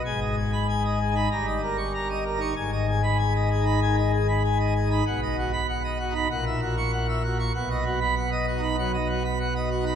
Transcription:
<<
  \new Staff \with { instrumentName = "Pipe organ" } { \time 4/4 \key gis \minor \tempo 4 = 96 gis''16 dis''16 gis'16 b''16 gis''16 dis''16 gis'16 b''16 ais''16 dis''16 ais'16 cis'''16 ais''16 dis''16 ais'16 cis'''16 | gis''16 dis''16 gis'16 b''16 gis''16 dis''16 gis'16 b''16 gis''16 dis''16 gis'16 b''16 gis''16 dis''16 gis'16 b''16 | fis''16 dis''16 fis'16 b''16 fis''16 dis''16 fis'16 b''16 fis''16 e''16 fis'16 cis'''16 fis''16 e''16 fis'16 cis'''16 | fis''16 dis''16 fis'16 b''16 fis''16 dis''16 fis'16 b''16 fis''16 dis''16 fis'16 b''16 fis''16 dis''16 fis'16 b''16 | }
  \new Staff \with { instrumentName = "Pipe organ" } { \clef bass \time 4/4 \key gis \minor << { gis,4~ \tuplet 3/2 { gis,4 dis'8 } g,4~ \tuplet 3/2 { g,4 dis'8 } | gis,4~ \tuplet 3/2 { gis,4 dis'8 } dis8 r8 \tuplet 3/2 { r4 dis'8 } | b,4~ \tuplet 3/2 { b,4 dis'8 } ais,2 | b,4~ \tuplet 3/2 { b,4 dis'8 } fis8 r8 \tuplet 3/2 { r4 dis'8 } | } \\ { gis,,2 g,,2 | gis,,1 | b,,2 ais,,2 | b,,1 | } >> }
>>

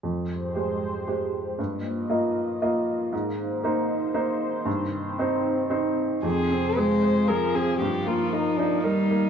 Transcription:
<<
  \new Staff \with { instrumentName = "Violin" } { \time 3/4 \key f \dorian \tempo 4 = 116 r2. | r2. | r2. | r2. |
aes'4 c''4 bes'8 aes'8 | g'8 f'8 ees'8 d'8 ees'4 | }
  \new Staff \with { instrumentName = "Analog synth pad" } { \time 3/4 \key f \dorian << { <g' c''>2. | <f' ees''>2. | <ees' c''>2.~ | <ees' c''>2. |
<f' aes'>2. | <ees' bes'>2. | } \\ { aes2. | bes2.~ | bes2. | c'2. |
c'2. | bes2. | } >> }
  \new Staff \with { instrumentName = "Upright piano" } { \time 3/4 \key f \dorian f,4 <aes g' c''>4 <aes g' c''>4 | g,4 <bes f' ees''>4 <bes f' ees''>4 | aes,4 <bes ees' c''>4 <bes ees' c''>4 | g,4 <c' ees' c''>4 <c' ees' c''>4 |
f,8 c'8 aes'8 c''8 aes'8 c'8 | g,8 bes8 bes'8 ees'8 bes'8 bes8 | }
  \new Staff \with { instrumentName = "Cello" } { \clef bass \time 3/4 \key f \dorian r2. | r2. | r2. | r2. |
c'4 aes4 f4 | f2 g4 | }
>>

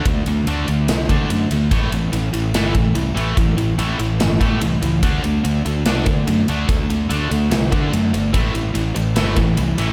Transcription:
<<
  \new Staff \with { instrumentName = "Distorted electric guitar" } { \clef bass \time 4/4 \key a \dorian \tempo 4 = 145 <d a>8 <d a>8 <d a d'>8 <d a>8 <d a>8 <d a d'>8 <d a>8 <d a>8 | <a, e a>8 <a, e>8 <a, e>8 <a, e>8 <a, e a>8 <a, e>8 <a, e>8 <a, e a>8 | <a, e>8 <a, e>8 <a, e a>8 <a, e>8 <a, e>8 <a, e a>8 <a, e>8 <a, e>8 | <d a d'>8 <d a>8 <d a>8 <d a>8 <d a d'>8 <d a>8 <d a>8 <d a d'>8 |
<d a>8 <d a>8 <d a d'>8 <d a>8 <d a>8 <d a d'>8 <d a>8 <d a>8 | <a, e a>8 <a, e>8 <a, e>8 <a, e>8 <a, e a>8 <a, e>8 <a, e>8 <a, e a>8 | }
  \new Staff \with { instrumentName = "Fingered electric bass" } { \clef bass \time 4/4 \key a \dorian d,8 d,8 d,8 d,8 c,8 d8 fis,8 d,8 | a,,8 a,,8 a,,8 a,,8 g,,8 a,8 c,8 a,,8 | a,,8 a,,8 a,,8 a,,8 g,,8 a,8 c,8 cis,8 | d,8 d,8 d,8 d,8 c,8 d8 fis,8 d,8 |
d,8 d,8 d,8 d,8 c,8 d8 fis,8 g,,8 | a,,8 a,,8 a,,8 a,,8 g,,8 a,8 c,8 a,,8 | }
  \new DrumStaff \with { instrumentName = "Drums" } \drummode { \time 4/4 <bd cymr>8 cymr8 cymr8 cymr8 <cymr sn>8 <bd cymr>8 cymr8 cymr8 | <bd cymr>8 cymr8 cymr8 cymr8 <cymr sn>8 <bd cymr>8 cymr8 cymr8 | <bd cymr>8 cymr8 cymr8 cymr8 <cymr sn>8 <bd cymr>8 cymr8 cymr8 | <bd cymr>8 cymr8 cymr8 cymr8 <cymr sn>8 <bd cymr>8 cymr8 cymr8 |
<bd cymr>8 cymr8 cymr8 cymr8 <cymr sn>8 <bd cymr>8 cymr8 cymr8 | <bd cymr>8 cymr8 cymr8 cymr8 <cymr sn>8 <bd cymr>8 cymr8 <cymr sn>8 | }
>>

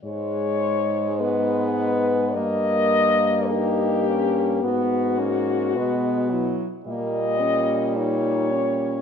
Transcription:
<<
  \new Staff \with { instrumentName = "French horn" } { \time 4/4 \key gis \minor \tempo 4 = 53 cis''4 b'4 dis''4 g'4 | fis'4. e'8 dis''4 des''4 | }
  \new Staff \with { instrumentName = "French horn" } { \time 4/4 \key gis \minor gis4 b4 ais2 | b8 cis'8 b8. r16 bes8 des'8 dis'8 des'8 | }
  \new Staff \with { instrumentName = "French horn" } { \time 4/4 \key gis \minor gis2 ais4 dis'8 cis'8 | b8 ais8 gis8 fis8 g2 | }
  \new Staff \with { instrumentName = "French horn" } { \clef bass \time 4/4 \key gis \minor gis,2 g,2 | gis,4 b,8. r16 bes,2 | }
>>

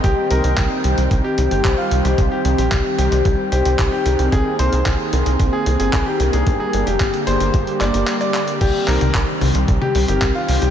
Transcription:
<<
  \new Staff \with { instrumentName = "Grand piano" } { \time 4/4 \key c \minor \tempo 4 = 112 g'8 bes'8 r4 r16 g'8 g'8 f'8 g'16~ | g'16 g'8 g'8 r16 g'8. r16 g'8 r16 g'8 r16 | aes'8 c''8 r4 r16 aes'8 aes'8 g'8 aes'16~ | aes'16 aes'8 g'8 r16 c''8. r16 d''8 r16 d''8 r16 |
g'8 bes'8 r4 r16 g'8 g'8 f'8 g'16 | }
  \new Staff \with { instrumentName = "Analog polysynth" } { \time 4/4 \key c \minor r8 <c' ees' g' c''>16 r8. <c' ees' g' c''>16 r8. <c' ees' g' c''>4 <c' ees' g' c''>8~ | <c' ees' g' c''>8 <c' ees' g' c''>16 r8. <c' ees' g' c''>16 r8. <c' ees' g' c''>4 <c' ees' aes' bes'>8~ | <c' ees' aes' bes'>8 <c' ees' aes' bes'>16 r8. <c' ees' aes' bes'>16 r8. <c' ees' aes' bes'>4 <bes d' g' bes'>8~ | <bes d' g' bes'>8 <bes d' g' bes'>16 r8. <bes d' g' bes'>16 r8. <bes d' g' bes'>16 <bes d' g' bes'>16 r8 <bes d' g' bes'>16 r16 |
r8 <c' ees' g' c''>16 r8. <c' ees' g' c''>16 r8. <c' ees' g' c''>16 <c' ees' g' bes'>16 r8 <c' ees' g' c''>16 r16 | }
  \new Staff \with { instrumentName = "Analog synth pad" } { \time 4/4 \key c \minor << { <g c' g''>1~ | <g c' g''>1 | <bes c' aes'>1 | <g g'>1 |
<g c' g'>1 | } \\ { ees1~ | ees1~ | ees1 | d1 |
ees1 | } >> }
  \new Staff \with { instrumentName = "Analog synth bass" } { \clef bass \time 4/4 \key c \minor c,16 r16 c,16 c,16 c,16 r16 c,16 c,16 c,16 r16 c,16 g,,16 c,16 r16 c,16 c,16 | c,16 r16 c,16 bes,,16 c,16 r16 c,16 c,16 c,16 r16 c,16 c,16 c,16 r16 c,16 c,16 | c,16 r16 c,16 c,16 c,16 r16 c,16 c,16 c,16 r16 c,16 g,,16 c,16 r16 c,16 c,16 | g,,16 r16 g,,16 f,,16 g,,16 r16 g,,16 g,,16 g,,16 r16 g,,16 g,,16 r4 |
c,16 r16 c,16 c,16 c,16 r16 c,16 c,16 c,16 r16 c,16 g,,16 c,16 r16 c,16 c,16 | }
  \new DrumStaff \with { instrumentName = "Drums" } \drummode { \time 4/4 <hh bd>8 hh16 hh16 <hc hh bd>8 hh16 hh16 <hh bd>8 hh16 hh16 <hc hh bd>8 hh16 hh16 | <hh bd>8 hh16 hh16 <hc hh bd>8 hh16 hh16 <hh bd>8 hh16 hh16 <hc hh bd>8 hh16 hh16 | <hh bd>8 hh16 hh16 <hc hh bd>8 hh16 hh16 <hh bd>8 hh16 hh16 <hc hh bd>8 hh16 hh16 | <hh bd>8 hh16 hh16 <hc hh bd>16 hh16 hh16 hh16 <hh bd>16 hh16 <hc hh>16 hh16 <hc hh>16 hh16 <hc hh>16 hh16 |
<cymc hh bd>8 <hc hho>16 <hh tommh>16 <hc hh bd>8 <hho tommh>16 hh16 <hh bd>16 tommh16 hho16 hh16 <hc hh bd>8 hho16 hh16 | }
>>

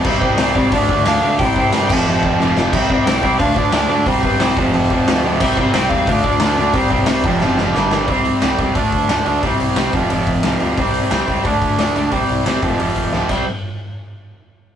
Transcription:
<<
  \new Staff \with { instrumentName = "Overdriven electric guitar" } { \time 4/4 \key f \lydian \tempo 4 = 179 c''4. d''4. f''4 | g''4 r8 a''2 r8 | e''4 g''4 f''8 d''4 d''8 | c''8 b'8 c''8 c''2 r8 |
e''4 g''8 f''4 d''4.~ | d''2. r4 | r1 | r1 |
r1 | r1 | r1 | }
  \new Staff \with { instrumentName = "Overdriven electric guitar" } { \clef bass \time 4/4 \key f \lydian <c g c'>8 <c g c'>8 <c g c'>8 <c g c'>8 <d a d'>8 <d a d'>8 <d a d'>8 <d a d'>8 | <c g c'>8 <c g c'>8 <c g c'>8 <f, c f>8 <f, c f>8 <f, c f>8 <f, c f>8 <f, c f>8 | <c g c'>8 <c g c'>8 <c g c'>8 <c g c'>8 <d a d'>8 <d a d'>8 <d a d'>8 <d a d'>8 | <c g c'>8 <c g c'>8 <c g c'>8 <f, c f>8 <f, c f>8 <f, c f>8 <f, c f>8 <f, c f>8 |
<c g c'>8 <c g c'>8 <c g c'>8 <c g c'>8 <d a d'>8 <d a d'>8 <d a d'>8 <d a d'>8 | <c g c'>8 <c g c'>8 <c g c'>8 <f, c f>8 <f, c f>8 <f, c f>8 <g, d g>8 <g, d g>8 | <c g c'>4 <c g c'>8 <c g c'>8 <d a d'>4 <d a d'>8 <d a d'>8 | <c g c'>4 <c g c'>8 <f, c f>8 <f, c f>4 <f, c f>8 <f, c f>8 |
<c g c'>4 <c g c'>8 <c g c'>8 <d a d'>4 <d a d'>8 <d a d'>8 | <c g c'>4 <c g c'>8 <f, c f>8 <f, c f>4 <f, c f>8 <c g c'>8 | r1 | }
  \new Staff \with { instrumentName = "Overdriven electric guitar" } { \clef bass \time 4/4 \key f \lydian <c g c'>8 <c g c'>8 <c g c'>8 <c g c'>8 <d a d'>8 <d a d'>8 <d a d'>8 <d a d'>8 | <c g c'>8 <c g c'>8 <c g c'>8 <f, c f>8 <f, c f>8 <f, c f>8 <f, c f>8 <f, c f>8 | <c g c'>8 <c g c'>8 <c g c'>8 <c g c'>8 <d a d'>8 <d a d'>8 <d a d'>8 <d a d'>8 | <c g c'>8 <c g c'>8 <c g c'>8 <f, c f>8 <f, c f>8 <f, c f>8 <f, c f>8 <f, c f>8 |
<c g c'>8 <c g c'>8 <c g c'>8 <c g c'>8 <d a d'>8 <d a d'>8 <d a d'>8 <d a d'>8 | <c g c'>8 <c g c'>8 <c g c'>8 <f, c f>8 <f, c f>8 <f, c f>8 <g, d g>8 <g, d g>8 | <c g c'>4 <c g c'>8 <c g c'>8 <d a d'>4 <d a d'>8 <d a d'>8 | <c g c'>4 <c g c'>8 <f, c f>8 <f, c f>4 <f, c f>8 <f, c f>8 |
<c g c'>4 <c g c'>8 <c g c'>8 <d a d'>4 <d a d'>8 <d a d'>8 | <c g c'>4 <c g c'>8 <f, c f>8 <f, c f>4 <f, c f>8 <c g c'>8 | r1 | }
  \new Staff \with { instrumentName = "Picked electric bass" } { \clef bass \time 4/4 \key f \lydian c,8 c,8 c,8 c,8 d,8 d,8 d,8 d,8 | c,4 g,8 f,,8 f,,4 f,,4 | c,8 c,8 c,8 c,8 d,8 d,8 d,8 d,8 | c,4 c,8 f,,8 f,,4 d,4 |
c,8 c,8 c,8 e,8 d,8 d,8 d,8 d,8 | c,4 c,8 f,,8 fis,,4 g,,4 | c,4 c,8 des,8 d,4 d,8 d,8 | c,8 c,8 c,8 f,,8 f,,8 f,,8 c,8 d,8 |
c,4 c,8 des,8 d,4 d,8 d,8 | c,8 c,8 c,8 f,,8 f,,8 f,,8 c,8 c,8 | r1 | }
  \new DrumStaff \with { instrumentName = "Drums" } \drummode { \time 4/4 <cymc bd>8 bd8 <hho sn>8 bd8 <hho bd>8 bd8 <hho sn>4 | <hho bd>8 bd8 <hho sn>8 <cymc bd>8 r8 bd8 sn8 sn8 | <cymc bd>8 bd8 <hho sn>8 bd8 <hho bd>8 bd8 <hho sn>4 | <hho bd>8 bd8 <hho sn>8 bd8 hho8 bd8 <hho sn>4 |
<cymc bd>8 bd8 <hho sn>8 bd8 <hho bd>8 bd8 <hho sn>4 | <hho bd>8 bd8 <hho sn>8 bd8 sn8 sn8 sn8 sn8 | <hho bd>8 hho8 <hho sn>8 <hho bd>8 <hho bd>8 <hho bd>8 <hho sn>8 hho8 | <hho bd>8 hho8 <hho sn>8 <hho bd>8 hho8 <hho bd>8 <hho sn>8 hho8 |
<hho bd>8 hho8 <hho sn>8 <hho bd>8 <hho bd>8 <hho bd>8 <hho sn>8 hho8 | <hho bd>8 hho8 <hho sn>8 <hho bd>8 hho8 <hho bd>8 sn8 <cymc bd>8 | r4 r4 r4 r4 | }
>>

